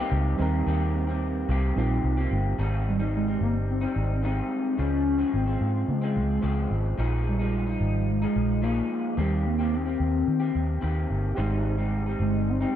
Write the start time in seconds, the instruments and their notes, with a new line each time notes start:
Already playing: reed electric piano G3 C4 D#4 A#4
0.00 clean electric guitar D#3 A#3 C4 G4
0.12 fingered electric bass C#2
0.37 fingered electric bass D#2, clean electric guitar D#3 A#3, reed electric piano G3 C4 D#4
0.41 clean electric guitar C4 G4, reed electric piano A#4
0.66 fingered electric bass D#2, clean electric guitar D#3 A#3 C4 G4
1.07 clean electric guitar A#3 C4 G4
1.49 fingered electric bass C2, clean electric guitar D#3 A#3 C4 G4
1.76 fingered electric bass A#1, clean electric guitar D#3 A#3 C4 G4, reed electric piano G3 C4 D#4 F4
2.04 fingered electric bass C2
2.17 clean electric guitar A#3 C4 G4
2.31 fingered electric bass G1
2.59 fingered electric bass G#1, clean electric guitar G#2 D#3 G3 C4 D#4
2.88 soft synth lead G3
2.99 clean electric guitar G#2 D#3 G3 C4 D#4
3.15 soft synth lead G#3
3.27 clean electric guitar G3 C4 D#4
3.41 fingered electric bass G1, soft synth lead A#3
3.69 soft synth lead C4
3.81 clean electric guitar G3 C4 D#4
3.96 fingered electric bass G#1
4.22 clean electric guitar G#2 D#3 G3 C4 D#4, soft synth lead C4
4.77 fingered electric bass C#2, clean electric guitar C#3 F3 G#3, soft synth lead C#4
5.18 clean electric guitar C#3 F3 G#3 C4
5.34 fingered electric bass G#1, soft synth lead C4
5.46 clean electric guitar F3 G#3 C4
5.61 fingered electric bass G#2
5.88 fingered electric bass C#3, soft synth lead G#3
6.01 clean electric guitar F3 G#3 C4
6.16 fingered electric bass C#2
6.42 fingered electric bass C#2, clean electric guitar C#3 F3 G#3 C4
6.70 fingered electric bass G#1
6.98 fingered electric bass A#1, clean electric guitar A#2 F3 G#3 D#4
7.28 soft synth lead G3
7.39 clean electric guitar A#2 F3 G#3 D#4
7.66 clean electric guitar F3 D#4
7.81 fingered electric bass G#1
8.10 soft synth lead G#3
8.22 clean electric guitar F3 G#3 D#4
8.36 fingered electric bass A#1
8.62 clean electric guitar A#2 F3 G#3 D#4, soft synth lead A#3
8.91 soft synth lead A#3
9.17 fingered electric bass D#2, clean electric guitar D#3 A#3 C4 G4, soft synth lead G3
9.45 soft synth lead A#3
9.59 clean electric guitar D#3 A#3 C4 G4
9.75 soft synth lead C4
9.85 clean electric guitar A#3 C4 G4
10.00 fingered electric bass D#2
10.28 fingered electric bass D#3
10.40 clean electric guitar A#3 C4 G4
10.55 fingered electric bass D#2
10.81 fingered electric bass D#2, clean electric guitar D#3 A#3 C4 G4
11.10 fingered electric bass G1
11.35 fingered electric bass G#1, clean electric guitar G#2 D#3 G3 C4 D#4, reed electric piano D#4 G4 C5
11.40 reed electric piano G#3
11.78 clean electric guitar G#2 D#3 G3 C4 D#4
12.06 clean electric guitar G3 C4 D#4
12.20 fingered electric bass G1, soft synth lead G#3
12.49 soft synth lead C4
12.61 clean electric guitar G3 C4 D#4